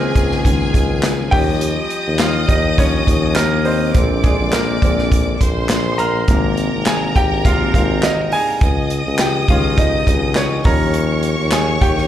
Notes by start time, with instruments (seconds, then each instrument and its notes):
Already playing: tuba C#2, grand piano D#3 G#3 A#3 C4 C#4 A#4 C5 C#5, violin section G#4 G#5
0.15 tuba C#2, kick, closed hi-hat
0.32 snare
0.44 grand piano D#3 G#3 C#4, kick, closed hi-hat
0.74 tuba C#2, kick, closed hi-hat
1.03 snare, clap, closed hi-hat
1.31 tuba D#2, grand piano F3 G3 C#4 G4 G5, violin section D#5 D#6, kick, open hi-hat
1.61 closed hi-hat
1.90 closed hi-hat
2.07 tuba D#2
2.19 grand piano F4 F5, snare, clap, closed hi-hat
2.48 tuba D#2, grand piano D#4 D#5, kick, closed hi-hat
2.78 grand piano F3 G3 C#4 C#5, kick, closed hi-hat
3.07 tuba D#2, kick, closed hi-hat
3.36 grand piano A#3 A#4, snare, clap, closed hi-hat
3.65 grand piano C4 C5, open hi-hat
3.94 tuba A#1, grand piano D3 G#3 C4, violin section D5 D6, kick, closed hi-hat
4.23 grand piano G#3 G#4, kick, closed hi-hat
4.40 tuba A#1
4.53 grand piano A#3 A#4, snare, clap, closed hi-hat
4.82 tuba A#1, grand piano D3 G#3 C4, kick, closed hi-hat
4.99 snare
5.12 kick, closed hi-hat
5.41 tuba A#1, violin section C5 C6, kick, closed hi-hat
5.69 snare, clap, closed hi-hat
5.92 grand piano C6
5.98 grand piano A#4 A#5, closed hi-hat
6.27 tuba G#1, grand piano C3 G#3 A#3, violin section A#4 A#5, kick, closed hi-hat
6.57 closed hi-hat
6.74 tuba G#1
6.86 grand piano G#4 G#5, snare, clap, closed hi-hat
7.16 tuba G#1, grand piano G4 G5, kick, closed hi-hat
7.45 grand piano C3 G#3 A#3 F4 F5, kick, closed hi-hat
7.74 tuba G#1, grand piano F4 F5, kick, closed hi-hat
8.03 grand piano D#4 D#5, snare, clap, closed hi-hat
8.32 grand piano G#4 G#5, open hi-hat
8.61 tuba C#2, violin section D#5 D#6, kick, closed hi-hat
8.90 closed hi-hat
9.06 tuba C#2
9.19 grand piano G4 G5, snare, clap, closed hi-hat
9.48 tuba C#2, grand piano D#3 G#3 C#4 F4 F5, kick, closed hi-hat
9.78 grand piano D#4 D#5, kick, closed hi-hat
10.07 tuba C#2, grand piano D#4 D#5, kick, closed hi-hat
10.35 grand piano C#4 C#5, snare, clap, closed hi-hat
10.64 tuba D#2, grand piano F3 G3 C#4 A#4 A#5, violin section C#5 C#6, kick, open hi-hat
10.94 closed hi-hat
11.23 closed hi-hat
11.40 tuba D#2
11.52 grand piano G#4 G#5, snare, clap, closed hi-hat
11.81 tuba D#2, grand piano G4 G5, kick, closed hi-hat
11.98 snare